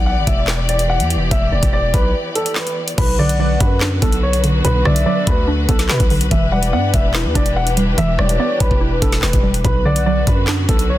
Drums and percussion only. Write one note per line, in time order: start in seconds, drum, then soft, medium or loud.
0.27 kick loud
0.27 closed hi-hat medium
0.48 snare loud
0.48 clap loud
0.69 closed hi-hat medium
0.79 closed hi-hat medium
1.00 closed hi-hat medium
1.10 closed hi-hat medium
1.31 kick loud
1.31 closed hi-hat medium
1.63 kick loud
1.63 closed hi-hat medium
1.94 kick loud
1.94 closed hi-hat medium
2.36 closed hi-hat medium
2.46 closed hi-hat medium
2.56 snare loud
2.56 clap medium
2.67 closed hi-hat medium
2.88 closed hi-hat medium
2.98 kick loud
2.98 closed hi-hat medium
2.98 crash loud
3.29 closed hi-hat medium
3.60 kick loud
3.60 closed hi-hat medium
3.81 snare loud
3.81 clap loud
4.02 kick loud
4.02 closed hi-hat medium
4.12 closed hi-hat medium
4.33 closed hi-hat medium
4.44 closed hi-hat medium
4.65 closed hi-hat medium
4.85 cross-stick loud
4.96 closed hi-hat medium
5.27 kick loud
5.27 closed hi-hat medium
5.69 kick loud
5.69 closed hi-hat medium
5.79 snare medium
5.79 closed hi-hat medium
5.89 snare loud
5.89 clap medium
6.00 kick loud
6.00 closed hi-hat medium
6.10 open hi-hat medium
6.21 closed hi-hat medium
6.31 kick loud
6.31 closed hi-hat medium
6.63 closed hi-hat medium
6.94 kick loud
6.94 closed hi-hat medium
7.14 snare loud
7.14 clap loud
7.35 kick loud
7.35 closed hi-hat medium
7.46 closed hi-hat medium
7.67 closed hi-hat medium
7.77 closed hi-hat medium
7.98 closed hi-hat medium
8.19 cross-stick loud
8.29 closed hi-hat medium
8.60 kick loud
8.60 closed hi-hat medium
8.71 kick medium
9.02 kick loud
9.02 closed hi-hat medium
9.12 snare medium
9.12 closed hi-hat medium
9.22 snare loud
9.22 clap medium
9.33 kick loud
9.33 closed hi-hat medium
9.54 closed hi-hat medium
9.65 kick loud
9.65 closed hi-hat medium
9.96 closed hi-hat medium
10.27 kick loud
10.27 closed hi-hat medium
10.47 snare loud
10.47 clap loud
10.69 kick loud
10.69 closed hi-hat medium
10.79 closed hi-hat medium